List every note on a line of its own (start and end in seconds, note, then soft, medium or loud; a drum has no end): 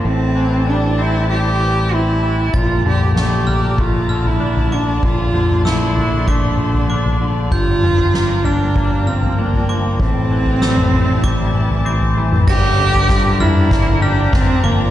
0.04 2.50 A1 medium
0.04 1.60 A2 medium
0.04 0.71 C4 medium
0.04 2.52 E4 medium
0.04 2.52 C5 medium
0.04 2.52 G5 medium
0.04 2.52 A5 medium
0.35 1.59 E3 medium
0.67 1.28 G3 soft
0.67 1.02 D4 medium
0.98 1.90 C4 medium
0.98 1.30 E4 medium
1.30 2.54 G3 soft
1.30 1.95 G4 medium
1.60 2.22 E3 soft
1.92 2.54 C4 soft
1.92 2.58 E4 medium
2.23 2.54 E3 medium
2.53 4.99 A#1 medium
2.53 4.10 A#2 medium
2.53 9.96 F3 medium
2.53 2.86 F4 medium
2.53 9.96 D5 medium
2.53 7.48 A5 medium
2.53 5.01 A#5 medium
2.53 3.16 A6 medium
2.53 kick medium
2.53 floor tom medium
2.85 4.09 D3 soft
2.85 3.16 G4 medium
2.85 mid tom medium
3.01 floor tom medium
3.16 3.77 A3 soft
3.16 3.82 G4 medium
3.16 snare medium
3.47 4.40 D4 soft
3.47 4.08 F6 medium
3.47 floor tom medium
3.78 5.34 A3 medium
3.78 4.29 F4 medium
3.78 kick medium
3.78 floor tom medium
4.09 4.71 D3 medium
4.09 4.72 F6 medium
4.25 4.75 E4 medium
4.25 floor tom medium
4.40 5.96 D4 medium
4.56 floor tom medium
4.72 5.33 D3 soft
4.72 5.06 D4 medium
4.72 5.34 D6 medium
5.03 7.48 A#1 medium
5.03 6.59 A#2 medium
5.03 5.65 F4 medium
5.03 7.49 C6 medium
5.03 kick medium
5.03 floor tom medium
5.34 6.57 D3 medium
5.34 mid tom medium
5.49 floor tom medium
5.65 6.26 A3 soft
5.65 6.31 E4 medium
5.65 6.28 E6 medium
5.65 snare medium
5.96 6.89 D4 soft
5.96 floor tom medium
6.28 7.52 A3 medium
6.28 7.22 D4 medium
6.28 6.88 D6 medium
6.28 kick medium
6.28 floor tom medium
6.58 7.20 D3 soft
6.74 floor tom medium
6.90 7.52 D4 medium
6.90 7.52 D6 medium
7.05 floor tom medium
7.21 7.52 D3 medium
7.51 9.96 G1 medium
7.51 9.07 G2 medium
7.51 8.47 F4 loud
7.51 12.44 G5 medium
7.51 9.97 A#5 medium
7.51 8.14 G6 medium
7.51 kick medium
7.51 floor tom medium
7.83 9.06 F3 soft
7.83 mid tom medium
7.98 floor tom medium
8.14 8.75 A#3 medium
8.14 snare medium
8.45 9.37 D4 medium
8.45 9.08 D4 medium
8.45 9.06 F6 medium
8.45 floor tom medium
8.76 10.00 A#3 medium
8.76 kick medium
8.76 floor tom medium
9.07 9.68 F3 soft
9.07 9.38 C4 medium
9.07 9.69 F6 medium
9.22 floor tom medium
9.38 10.03 A#3 medium
9.38 10.00 D4 medium
9.53 floor tom medium
9.69 10.00 F3 medium
9.69 10.31 D6 medium
9.99 12.44 A1 medium
9.99 11.55 A2 medium
9.99 11.87 C4 medium
9.99 12.46 E4 medium
9.99 12.46 C5 medium
9.99 12.46 A5 medium
9.99 kick medium
9.99 floor tom medium
10.31 11.53 E3 soft
10.46 floor tom medium
10.61 11.23 G3 medium
10.61 11.24 E6 medium
10.61 snare medium
10.77 mid tom medium
10.92 11.84 C4 medium
10.92 floor tom medium
11.23 12.48 G3 soft
11.23 11.85 D6 medium
11.23 kick medium
11.23 floor tom medium
11.55 12.16 E3 medium
11.70 floor tom medium
11.85 12.48 C4 medium
11.85 12.48 D6 medium
12.01 floor tom medium
12.17 12.48 E3 medium
12.32 mid tom medium
12.48 13.06 G1 medium
12.48 14.03 G2 medium
12.48 14.90 F3 medium
12.48 13.42 G4 loud
12.48 14.90 D5 medium
12.48 14.90 G5 medium
12.48 14.90 A#5 medium
12.48 13.10 A#6 medium
12.48 kick loud
12.48 snare soft
12.48 floor tom medium
12.48 crash loud
12.79 14.33 D3 medium
12.94 floor tom medium
13.09 13.67 G2 medium
13.09 14.64 F3 medium
13.09 kick medium
13.09 snare soft
13.40 14.33 D4 medium
13.40 14.05 E4 medium
13.40 14.01 F6 medium
13.40 floor tom medium
13.40 mid tom medium
13.71 14.29 G1 medium
13.71 14.90 A#3 medium
13.71 kick loud
13.71 snare medium
13.87 floor tom medium
14.02 14.34 D4 medium
14.02 14.90 G4 medium
14.02 14.64 F6 medium
14.33 14.48 G1 medium
14.33 14.67 C4 medium
14.33 14.90 D4 medium
14.33 kick loud
14.33 snare medium
14.33 floor tom medium
14.33 mid tom medium
14.64 14.90 G1 medium
14.64 14.90 F3 medium
14.64 14.90 A#3 medium
14.64 14.90 D6 medium